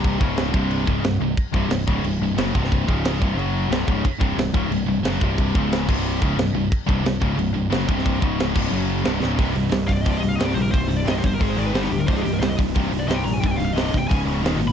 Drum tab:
CC |x---x---x---x---|x---x---x---x---|x---x---x---x---|x---x---x---x---|
HH |----------------|----------------|----------------|----------------|
SD |----o-------o---|----o-------o--o|----o-------o---|----o-------o---|
BD |o-o---o---o-----|o-o---o-------o-|o-o---o-------o-|o-o---o-------o-|

CC |x---x-x-x---x---|x---x---x---x---|x---x-x-x---x---|----------------|
HH |----------------|----------------|----------------|o-o-o-o-o-o-o-o-|
SD |----o-------o---|----o-------o--o|----o-------o-o-|----o-o-----oo--|
BD |o-o---o---o-----|o-o---o-------o-|o-o---o---------|o-----o-o-------|

CC |----------------|----------------|----------------|
HH |o-o-o-o-o-o-o-o-|o-o-o-o-o-o-o-o-|o-o-o-o-o-o-o-o-|
SD |----o-------oo--|----o-------o---|----o-o-----oo--|
BD |o-----o-o-------|o-----o-o-------|o-----o-o-------|